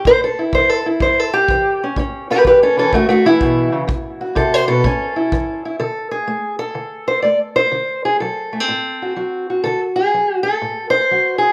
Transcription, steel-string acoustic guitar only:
Already playing: C#4
0.06 A2 C5
0.24 A4
0.39 E4
0.53 E3 C5
0.69 A4
0.86 E4
1.01 E3 C5
1.20 A4
1.33 G4
1.50 E3
1.84 C#4
1.97 A2 C#4
2.30 C#4 G4 B4
2.44 E3 G4 B4
2.63 C#4 A4
2.77 E3 C#4 A4
2.93 E3 A3 F#4
3.09 A3 F#4
3.25 E3 E4
3.42 B2
3.72 C#3
3.87 D3
4.21 F#4
4.35 C3 A4
4.54 C5
4.68 B2 A4
4.84 A2 C#4
5.16 E4
5.33 E3
5.65 E4
5.79 D3 A4
6.11 G#4
6.27 A3
6.59 A4
6.75 D3
7.08 C5
7.22 A3 D5
7.56 C5
7.72 D3
8.05 G#4
8.20 F#3 A4
8.53 A3
8.60 C4
8.68 A2
9.02 F#4
9.16 F#3 F#4
9.50 F#4
9.64 D3 A4
9.96 G#4
10.14 F#3
10.43 A4
10.62 A2
10.90 C5
11.11 F#3 F#4
11.38 G#4

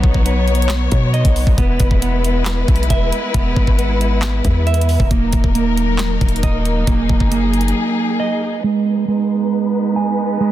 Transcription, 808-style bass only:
0.04 B1
0.92 B2
1.25 B1
1.47 B1
1.58 E1
1.80 E1
2.68 B1
2.90 E1
3.34 E1
3.56 G#1
4.45 E2
5.00 E1
5.11 D#1
5.33 D#1
5.44 D#1
6.21 D#1
6.43 D#1
6.87 D#1
7.09 D#1
7.20 F#1

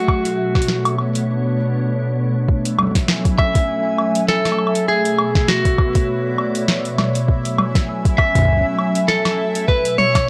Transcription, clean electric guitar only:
Already playing: F#4
3.39 E5
4.28 A4
4.88 G#4
5.48 F#4
8.18 E5
9.08 A4
9.68 B4
9.98 C#5

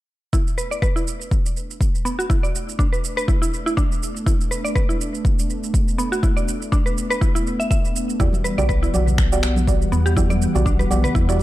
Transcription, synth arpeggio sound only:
0.33 E4
0.58 B4
0.71 D5
0.82 B4
0.96 E4
2.05 B3
2.19 F#4
2.30 E4
2.43 D5
2.79 D4
2.93 B4
3.17 B4
3.28 E4
3.42 E4
3.66 E4
3.77 D4
4.26 E4
4.51 B4
4.65 D5
4.75 B4
4.89 E4
5.98 B3
6.12 F#4
6.23 E4
6.37 D5
6.72 D4
6.86 B4
7.10 B4
7.21 E4
7.35 E4
7.60 E5
7.71 E5
8.20 E4
8.44 B4
8.58 D5
8.69 B4
8.83 E4
9.92 B3
10.06 G4
10.16 E4
10.30 D5
10.66 D4
10.79 B4
11.04 B4
11.15 E4
11.29 E4

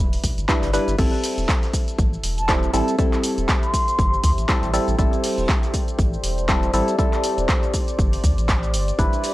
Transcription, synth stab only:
Already playing: G3 D4 E4 B4
0.48 G3 D4 E4 B4
0.74 G3 D4 E4 B4
0.98 G3 C4 E4 A4
2.48 G3 C4 E4 A4
2.73 G3 C4 E4 A4
2.98 G3 C4 E4 A4
4.49 G3 C4 E4 A4
4.74 G3 C4 E4 A4
4.98 G3 C4 E4 A4
6.49 G3 C4 E4 A4
6.74 G3 C4 E4 A4
6.99 G3 C4 E4 A4
8.99 G3 D4 E4 B4

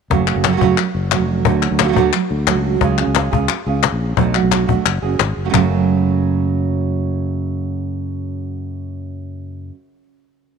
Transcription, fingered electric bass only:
0.10 F#1
0.36 F#1
0.61 F#1
0.95 F#1
1.20 F1
1.46 D2
1.71 D2
1.96 D2
2.31 D2
2.55 C#2
2.81 C#2
3.07 C#2
3.33 C#2
3.66 C#2
3.92 A#1
4.17 B1
4.43 B1
4.69 B1
4.86 F#1
5.02 F#1
5.20 G#1
5.37 F#1
5.53 F#1

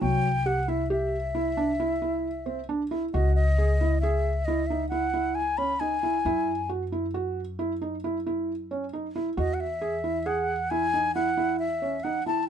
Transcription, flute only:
0.01 G5
0.46 F#5
0.69 E5
0.92 E5
3.14 D#5
3.36 D#5
4.01 E5
4.45 D#5
4.67 E5
4.89 F#5
5.35 G#5
5.58 B5
5.80 G#5
9.39 D#5
9.54 F#5
9.60 E5
10.26 F#5
10.70 G#5
11.15 F#5
11.59 E5
12.03 F#5
12.27 A5

